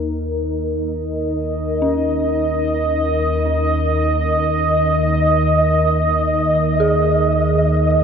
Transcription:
Already playing: synth drone D#2 D#3, ambient pad D#4 A#4 D#5
1.82 synth bell C#4
4.44 synth texture D#5
6.80 synth bell G#4

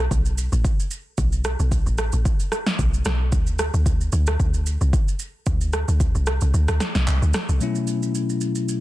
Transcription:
0.11 log drum bass B1, kick, shaker
0.26 shaker
0.38 shaker
0.52 log drum bass A1, shaker
0.65 kick, shaker
0.80 shaker
0.91 shaker
1.18 log drum bass B1, kick, shaker
1.32 shaker
1.44 cross-stick, shaker
1.59 log drum bass B1, shaker
1.72 kick, shaker
1.86 log drum bass A1, shaker
1.98 cross-stick, shaker
2.12 log drum bass A1, shaker
2.25 kick, shaker
2.40 shaker
2.52 cross-stick, shaker
2.67 snare, shaker
2.79 log drum bass B1, kick, shaker
2.94 shaker
3.05 log drum bass B1, cross-stick, snare, shaker
3.32 log drum bass D2, kick, shaker
3.47 shaker
3.59 cross-stick, shaker
3.74 log drum bass D2, shaker
3.86 kick, shaker
4.01 shaker
4.12 log drum bass D2, shaker
4.27 cross-stick, shaker
4.40 log drum bass D2, kick, shaker
4.54 shaker
4.66 shaker
4.81 log drum bass C2, shaker
4.93 kick, shaker
5.08 shaker
5.19 shaker
5.46 log drum bass D2, kick, shaker
5.61 shaker
5.73 cross-stick, shaker
5.88 log drum bass D2, shaker
6.00 kick, shaker
6.15 log drum bass C2, shaker
6.27 cross-stick, shaker
6.41 log drum bass C2, shaker
6.54 log drum bass D2, shaker
6.68 log drum bass D2, cross-stick, shaker
6.80 cross-stick, snare, shaker
6.95 log drum bass B1, snare, shaker
7.07 log drum bass C2, clap, shaker
7.22 log drum bass D2, shaker
7.34 cross-stick, snare, shaker
7.49 log drum bass C2, shaker
7.59 tine electric piano B2 F#3 A3 C#4, shaker
7.63 tine electric piano E4
7.75 shaker
7.87 shaker
8.03 shaker
8.15 shaker
8.30 shaker
8.41 shaker
8.55 shaker
8.69 shaker

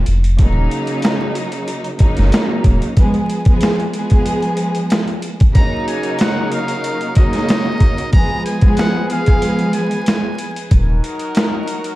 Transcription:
0.06 sub bass F1, closed hi-hat
0.24 closed hi-hat
0.39 sub bass D#1, string section C#3 F#3 A#3 D#4, kick, closed hi-hat
0.71 closed hi-hat
0.87 closed hi-hat
1.02 snare, closed hi-hat
1.35 closed hi-hat
1.52 closed hi-hat
1.68 closed hi-hat
1.84 closed hi-hat
1.99 string section C#3 F#3 A#3 D#4, kick, closed hi-hat
2.17 sub bass F#1, snare, closed hi-hat
2.32 snare, closed hi-hat
2.64 sub bass D#1, kick, closed hi-hat
2.82 closed hi-hat
2.97 string section F3 G#3 B3 G#4, kick, closed hi-hat
3.14 closed hi-hat
3.30 closed hi-hat
3.45 string section F3 G#3 B3 G#4, kick, closed hi-hat
3.61 snare, closed hi-hat
3.80 closed hi-hat
3.93 string section F3 G#3 B3 G#4, closed hi-hat
4.10 kick, closed hi-hat
4.26 closed hi-hat
4.42 closed hi-hat
4.57 closed hi-hat
4.75 closed hi-hat
4.90 snare, closed hi-hat
5.07 closed hi-hat
5.22 closed hi-hat
5.40 kick, closed hi-hat
5.54 string section C#3 F#3 A#3 D#4, horn section F#3 D#4 A#4, analog synth pad F#4 A#4 D#5 C#6, muted trumpet A#5, kick, closed hi-hat
5.88 muted trumpet G#5, closed hi-hat
6.03 closed hi-hat
6.19 muted trumpet F#5, snare, closed hi-hat
6.52 muted trumpet F5, closed hi-hat
6.68 closed hi-hat
6.84 closed hi-hat
7.01 closed hi-hat
7.15 string section C#3 F#3 A#3 D#4, muted trumpet D#5, kick, closed hi-hat
7.33 snare, closed hi-hat
7.48 snare, closed hi-hat
7.80 kick, closed hi-hat
7.98 closed hi-hat
8.13 string section F3 G#3 B3 G#4, horn section F3 B3 G#4, analog synth pad G#4 B4 G#5, muted trumpet A#5, kick, closed hi-hat
8.45 muted trumpet G#5, closed hi-hat
8.61 string section F3 G#3 B3 G#4, kick, closed hi-hat
8.77 muted trumpet F#5, snare, closed hi-hat
9.10 string section F3 G#3 B3 G#4, muted trumpet F5, closed hi-hat
9.26 kick, closed hi-hat
9.42 closed hi-hat
9.59 closed hi-hat
9.73 muted trumpet G#5, closed hi-hat
9.91 closed hi-hat
10.06 snare, closed hi-hat
10.39 closed hi-hat
10.56 closed hi-hat
10.69 sub bass D#1, horn section F#3 D#4 A#4, analog synth pad A#4 D#5 F#5 C#6, kick, closed hi-hat
11.04 closed hi-hat
11.19 closed hi-hat
11.35 snare, closed hi-hat
11.68 closed hi-hat
11.84 closed hi-hat

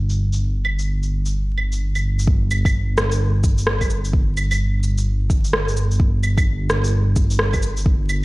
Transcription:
Already playing: detuned saw bass G1
0.10 shaker
0.33 shaker
0.65 claves
0.79 shaker
1.03 shaker
1.26 shaker
1.58 claves
1.72 shaker
1.95 claves, shaker
2.19 shaker
2.27 detuned saw bass G1, kick
2.51 cabasa, claves
2.65 kick, claves, shaker
2.98 cross-stick, cabasa
3.11 shaker
3.44 kick, cabasa
3.58 shaker
3.67 cross-stick
3.81 kick, claves, shaker
3.90 cabasa
4.05 shaker
4.13 kick
4.37 cabasa, claves
4.51 claves, shaker
4.83 cabasa
4.98 shaker
5.30 kick, cabasa
5.44 shaker
5.53 cross-stick
5.68 shaker
5.77 cabasa
5.91 shaker
6.00 kick
6.23 cabasa, claves
6.37 kick, claves, shaker
6.70 cross-stick, cabasa
6.84 shaker
7.16 kick, cabasa
7.30 shaker
7.39 cross-stick
7.53 kick, claves, shaker
7.63 cabasa
7.77 shaker
7.86 kick
8.09 cabasa, claves

